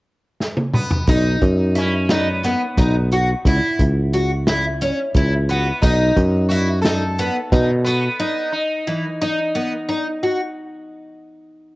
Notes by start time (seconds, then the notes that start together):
0.40 snare
0.57 high tom
0.73 B3, mid tom
0.91 floor tom
1.07 B1 D#4, kick, closed hi-hat
1.42 F#2, kick, closed hi-hat
1.75 C#4 E4, snare, closed hi-hat
2.09 B3 D#4, snare, closed hi-hat
2.43 B3, snare, closed hi-hat
2.77 B1 D#4, kick, closed hi-hat
3.12 F#4, closed hi-hat
3.45 C#2 E4, kick, closed hi-hat
3.79 C#2, kick, closed hi-hat
4.13 F#4, closed hi-hat
4.47 E4, snare, closed hi-hat
4.81 C#4, closed hi-hat
5.15 C#2 E4, kick, closed hi-hat
5.49 B3 F#4, closed hi-hat
5.82 B1 D#4, kick, closed hi-hat
6.16 F#2, kick, closed hi-hat
6.49 E4 F#4, closed hi-hat
6.82 D#4 A4, snare, closed hi-hat
7.18 B3, closed hi-hat
7.52 B2 D#4, kick, closed hi-hat
7.84 B3 F#4, closed hi-hat
8.20 D#4
8.52 D#4
8.87 E3
9.21 D#4
9.55 B3
9.89 D#4
10.23 F#4